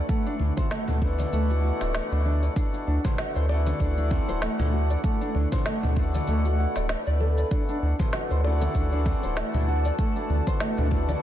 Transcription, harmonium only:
0.08 0.53 E3 medium
0.08 0.53 A3 medium
0.08 0.53 D4 medium
0.08 0.54 F#4 medium
0.56 0.98 B2 medium
0.56 0.98 E3 medium
0.56 0.99 A3 medium
0.56 0.99 D4 medium
0.56 0.99 F#4 medium
1.00 2.52 B2 loud
1.00 2.53 E3 medium
1.00 2.53 A3 medium
1.00 2.54 D4 medium
1.00 2.54 F#4 loud
2.56 3.00 B2 medium
2.56 3.00 E3 medium
2.56 3.01 A3 medium
2.56 3.01 D4 medium
2.56 3.01 F#4 loud
3.04 3.46 B2 medium
3.04 3.46 E3 medium
3.04 3.46 A3 medium
3.04 3.46 D4 medium
3.04 3.46 F#4 medium
3.48 5.00 E3 medium
3.48 5.01 A3 medium
3.48 5.01 D4 medium
3.48 5.02 F#4 loud
5.04 5.48 E3 medium
5.04 5.48 A3 medium
5.04 5.48 D4 medium
5.04 5.49 F#4 loud
5.51 5.93 B2 medium
5.51 5.93 E3 medium
5.51 5.94 A3 medium
5.51 5.94 D4 medium
5.51 5.94 F#4 medium
5.95 6.86 B2 loud
5.95 6.86 E3 medium
5.95 6.87 A3 medium
5.95 6.87 D4 medium
5.99 6.88 F#4 loud
6.89 7.02 B2 medium
6.89 7.02 E3 medium
6.89 7.03 A3 medium
6.89 7.03 D4 medium
6.89 7.03 B4 medium
7.06 7.48 B2 medium
7.06 7.48 E3 medium
7.06 7.48 A3 medium
7.06 7.48 D4 medium
7.06 7.49 B4 medium
7.50 7.95 B2 medium
7.50 7.95 E3 medium
7.50 7.96 A3 medium
7.50 7.96 D4 medium
7.50 7.96 F#4 medium
7.99 8.40 B2 medium
7.99 8.41 E3 medium
7.99 8.41 A3 medium
7.99 8.41 D4 medium
7.99 8.41 F#4 medium
8.43 9.95 E3 medium
8.43 9.95 A3 medium
8.43 9.96 D4 medium
8.43 9.96 F#4 loud
9.98 10.42 E3 medium
9.98 10.43 A3 medium
9.98 10.43 D4 medium
9.98 10.43 F#4 loud
10.46 10.88 B2 medium
10.46 10.88 E3 medium
10.46 10.88 A3 medium
10.46 10.88 D4 medium
10.46 10.89 F#4 medium
10.90 11.22 B2 loud
10.90 11.22 E3 medium
10.90 11.22 A3 medium
10.90 11.22 D4 medium
10.90 11.22 F#4 loud

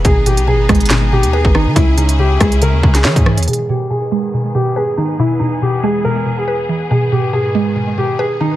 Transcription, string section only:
0.05 1.75 B3 medium
0.05 1.75 D#4 medium
0.05 3.44 G#4 medium
1.76 3.46 C#3 medium
1.76 3.46 C#4 medium
1.76 3.46 E4 medium
3.48 5.17 G#2 medium
3.48 5.17 D#3 medium
3.48 8.56 B3 medium
3.48 8.56 G#4 medium
5.19 6.89 E2 medium
5.19 6.89 E3 medium
6.91 8.56 G#2 medium
6.91 8.56 D#3 medium

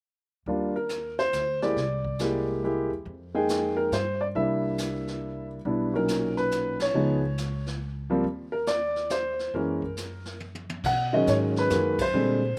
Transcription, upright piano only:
0.47 0.72 G3 soft
0.47 0.73 A#3 soft
0.47 0.73 D4 soft
0.47 0.73 F4 medium
0.76 1.15 A#4 medium
1.19 1.59 C5 medium
1.62 1.75 G#3 soft
1.62 1.75 A#3 medium
1.62 1.76 E4 soft
1.62 1.76 G4 medium
1.62 2.44 D5 medium
2.20 2.62 G#3 medium
2.20 2.62 A#3 soft
2.20 2.62 E4 soft
2.20 2.62 G4 medium
2.64 2.89 G#3 soft
2.64 2.89 A#3 soft
2.64 2.89 E4 soft
2.64 2.89 G4 medium
3.34 3.89 G#3 medium
3.34 3.89 A#3 soft
3.34 3.90 D#4 soft
3.34 3.75 G#4 medium
3.34 3.90 G5 medium
3.77 3.92 A#4 medium
3.93 4.19 C5 medium
4.21 4.26 D5 medium
4.35 5.56 G3 soft
4.35 5.56 A#3 soft
4.35 5.56 D4 soft
4.35 5.56 E4 soft
4.35 5.46 E5 medium
5.65 5.90 G3 soft
5.65 5.91 B3 soft
5.65 5.91 D4 soft
5.65 5.91 E4 medium
5.94 6.86 A#2 soft
5.94 6.86 F#3 soft
5.94 6.86 C#4 soft
5.94 6.86 D#4 medium
5.94 6.34 A#4 medium
6.37 6.77 B4 medium
6.82 7.63 C#5 medium
6.94 7.20 F3 soft
6.94 7.20 G#3 soft
6.94 7.20 B3 soft
6.94 7.20 D#4 medium
8.10 8.23 F3 medium
8.10 8.23 G3 medium
8.10 8.23 A#3 medium
8.10 8.23 C4 medium
8.52 8.66 A#4 medium
8.67 9.12 D5 medium
9.11 9.51 C5 medium
9.55 9.80 E3 medium
9.55 9.80 G#3 soft
9.55 9.80 A#3 soft
9.55 9.80 C#4 medium
9.55 10.37 A#4 medium
10.86 11.11 F#5 medium
11.13 11.68 D#3 medium
11.13 11.68 F#3 medium
11.13 11.68 G#3 medium
11.13 11.69 C#4 medium
11.13 11.28 D#5 medium
11.29 11.35 C#5 medium
11.59 12.02 B4 loud
11.70 11.96 D#3 medium
11.70 11.96 F#3 medium
11.70 11.96 G#3 soft
11.70 11.97 A#3 medium
12.02 12.59 C5 medium
12.14 12.39 D3 medium
12.14 12.39 G3 soft
12.14 12.40 G#3 medium
12.14 12.40 C4 medium

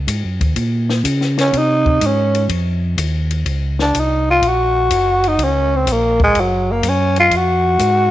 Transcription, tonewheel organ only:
0.07 0.24 G#2 medium
0.24 0.40 F#2 medium
0.39 0.55 D#2 medium
0.56 1.03 A#2 medium
1.04 1.51 C#3 loud
1.53 2.00 C3 medium
2.01 2.48 G#2 medium
2.49 2.96 F2 medium
2.97 3.44 D#2 loud
3.46 3.93 C#2 medium
3.94 4.41 C2 medium
4.42 4.89 A#1 medium
4.90 5.37 F#1 medium
5.38 5.86 C#2 medium
5.86 6.34 A#1 medium
6.35 6.82 F#1 medium
6.83 7.30 F#2 loud
7.31 7.78 F2 medium
7.79 8.11 G#2 medium

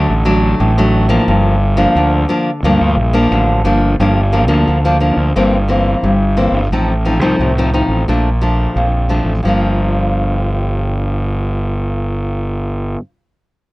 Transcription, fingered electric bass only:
0.09 0.53 A1 medium
0.60 1.18 A1 loud
1.27 1.85 G1 medium
1.95 2.24 D2 medium
2.63 2.78 D2 medium
2.81 2.95 D2 medium
2.96 3.28 A#1 medium
3.31 3.62 A1 medium
3.64 3.95 G1 medium
3.99 4.48 G1 medium
4.48 4.64 D2 medium
4.68 5.11 D2 medium
5.17 5.32 D2 medium
5.36 5.94 G1 medium
6.03 6.47 G1 medium
6.52 6.67 G1 medium
6.70 7.20 A1 medium
7.20 7.35 C2 medium
7.39 7.83 C2 medium
7.88 8.04 A1 medium
8.08 8.66 A#1 medium
8.76 9.19 A#1 medium
9.24 9.40 A1 medium
9.44 12.95 G1 medium

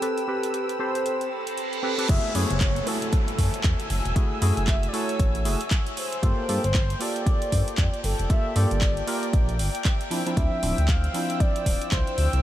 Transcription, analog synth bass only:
2.09 2.19 F#1 loud
2.35 2.45 F#2 medium
2.50 2.81 F#1 medium
3.38 3.48 F#2 medium
3.64 3.74 E2 medium
3.90 4.00 F#1 medium
4.06 4.12 E1 medium
4.42 4.52 F#2 medium
4.57 4.88 F#1 medium
5.20 5.47 A1 medium
5.45 5.55 F#1 medium
6.23 6.33 G1 loud
6.49 6.59 G2 medium
6.64 6.95 G1 medium
7.52 7.62 G2 medium
7.78 7.88 F2 medium
8.04 8.14 G1 medium
8.19 8.26 F1 medium
8.56 8.66 G2 medium
8.71 9.01 G1 medium
9.33 9.61 A#1 medium
9.59 9.69 G1 medium
10.37 10.47 D2 loud
10.63 10.73 D1 medium
10.78 11.08 D2 medium
11.66 11.76 D1 medium
11.92 12.02 C2 medium
12.18 12.28 D2 loud
12.33 12.40 C2 medium

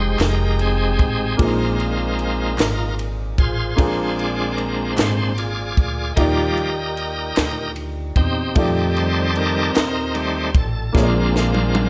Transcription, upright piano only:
0.00 1.34 G#3 medium
0.00 1.35 D#4 medium
0.00 1.35 F4 medium
0.00 1.36 G4 medium
0.00 1.36 C5 medium
1.37 2.54 A#2 medium
1.37 3.73 A#3 medium
1.37 1.45 D4 soft
1.37 3.74 F4 medium
1.37 3.75 G#4 medium
1.37 3.75 C5 medium
1.44 3.77 D#4 medium
3.76 4.93 A#2 medium
3.76 6.12 A#3 medium
3.76 6.12 D4 medium
3.76 6.13 F4 medium
3.76 6.13 G#4 medium
3.76 6.14 C5 medium
6.16 7.33 D#3 medium
6.16 8.51 A#3 medium
6.16 8.52 D#4 medium
6.16 8.52 F4 medium
6.16 8.53 G4 medium
6.20 8.53 D5 medium
8.55 10.90 A3 medium
8.55 10.90 D#4 medium
8.55 10.91 F4 soft
8.55 10.92 G4 medium
8.55 10.92 D5 medium
10.93 11.89 A#2 medium
10.93 11.89 A#3 medium
10.93 11.89 D4 soft
10.93 11.89 F4 medium
10.93 11.89 G#4 soft
10.93 11.02 C#5 medium
11.03 11.89 D5 medium

